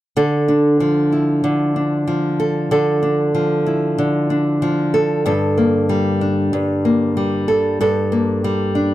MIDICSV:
0, 0, Header, 1, 2, 480
1, 0, Start_track
1, 0, Key_signature, -1, "minor"
1, 0, Tempo, 635593
1, 125, Time_signature, 4, 2, 24, 8
1, 6754, End_track
2, 0, Start_track
2, 0, Title_t, "Nylon-string guitar"
2, 0, Program_c, 0, 24
2, 125, Note_on_c, 0, 50, 63
2, 128, Note_on_c, 0, 69, 52
2, 366, Note_on_c, 0, 62, 46
2, 607, Note_on_c, 0, 53, 51
2, 849, Note_on_c, 0, 64, 44
2, 1082, Note_off_c, 0, 50, 0
2, 1085, Note_on_c, 0, 50, 58
2, 1325, Note_off_c, 0, 62, 0
2, 1328, Note_on_c, 0, 62, 41
2, 1558, Note_off_c, 0, 53, 0
2, 1567, Note_on_c, 0, 53, 46
2, 1807, Note_off_c, 0, 69, 0
2, 1810, Note_on_c, 0, 69, 49
2, 2045, Note_off_c, 0, 50, 0
2, 2048, Note_on_c, 0, 50, 61
2, 2049, Note_off_c, 0, 69, 0
2, 2052, Note_on_c, 0, 69, 52
2, 2282, Note_off_c, 0, 62, 0
2, 2285, Note_on_c, 0, 62, 44
2, 2517, Note_off_c, 0, 53, 0
2, 2526, Note_on_c, 0, 53, 49
2, 2758, Note_off_c, 0, 64, 0
2, 2767, Note_on_c, 0, 64, 50
2, 3006, Note_off_c, 0, 50, 0
2, 3009, Note_on_c, 0, 50, 59
2, 3245, Note_off_c, 0, 62, 0
2, 3248, Note_on_c, 0, 62, 42
2, 3480, Note_off_c, 0, 53, 0
2, 3489, Note_on_c, 0, 53, 53
2, 3726, Note_off_c, 0, 69, 0
2, 3729, Note_on_c, 0, 69, 51
2, 3969, Note_on_c, 0, 43, 68
2, 3971, Note_off_c, 0, 69, 0
2, 3974, Note_on_c, 0, 69, 58
2, 4020, Note_off_c, 0, 53, 0
2, 4020, Note_off_c, 0, 64, 0
2, 4207, Note_off_c, 0, 62, 0
2, 4210, Note_on_c, 0, 58, 47
2, 4450, Note_on_c, 0, 55, 54
2, 4692, Note_on_c, 0, 62, 43
2, 4922, Note_off_c, 0, 43, 0
2, 4932, Note_on_c, 0, 43, 61
2, 5164, Note_off_c, 0, 58, 0
2, 5173, Note_on_c, 0, 58, 45
2, 5404, Note_off_c, 0, 55, 0
2, 5413, Note_on_c, 0, 55, 53
2, 5646, Note_off_c, 0, 69, 0
2, 5649, Note_on_c, 0, 69, 51
2, 5653, Note_off_c, 0, 50, 0
2, 5886, Note_off_c, 0, 43, 0
2, 5895, Note_on_c, 0, 43, 66
2, 5896, Note_off_c, 0, 69, 0
2, 5899, Note_on_c, 0, 69, 54
2, 6122, Note_off_c, 0, 58, 0
2, 6131, Note_on_c, 0, 58, 48
2, 6367, Note_off_c, 0, 55, 0
2, 6376, Note_on_c, 0, 55, 52
2, 6606, Note_off_c, 0, 62, 0
2, 6609, Note_on_c, 0, 62, 51
2, 6754, Note_off_c, 0, 43, 0
2, 6754, Note_off_c, 0, 55, 0
2, 6754, Note_off_c, 0, 58, 0
2, 6754, Note_off_c, 0, 62, 0
2, 6754, Note_off_c, 0, 69, 0
2, 6754, End_track
0, 0, End_of_file